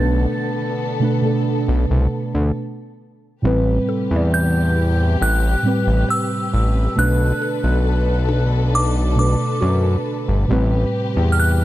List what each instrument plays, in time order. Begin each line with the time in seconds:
Already playing: analog synth bass B1, synth keys B2 A3 D4 B4, string section D3 B3 A4, synth bell A6
1.00 synth keys B2 A3 D4
1.04 synth keys B4
1.21 synth keys B2 A3 D4
1.26 synth keys A4
1.68 analog synth bass B1
1.91 analog synth bass C2
2.35 analog synth bass D2
3.42 analog synth bass A1, synth keys A2 G3 C4, string section C3 G4 B4
3.47 synth keys B4
3.89 synth pluck A4
4.11 analog synth bass E2
4.16 synth pluck D5
4.34 synth bell G6
5.21 analog synth bass A1, synth bell F#6
5.63 synth keys A2 G3 C4
5.67 synth keys B4
5.87 analog synth bass A1
6.09 synth pluck B4, synth bell E6
6.54 analog synth bass A1
6.95 analog synth bass B1, synth keys B2 A3 D4, string section D3 A4, synth bell F#6
6.99 synth keys B4
7.42 synth pluck A4
7.64 analog synth bass B1
8.29 synth pluck D4
8.75 synth bell D6
9.16 synth keys B2 A3 D4, synth bell D6
9.20 synth keys B4
9.61 analog synth bass F#2, synth pluck F#4
10.28 analog synth bass G1
10.48 analog synth bass A1, synth keys A2 G3 C4, string section C3 G4 B4
10.52 synth keys B4
11.17 analog synth bass E2
11.32 synth bell F6
11.40 synth bell F#6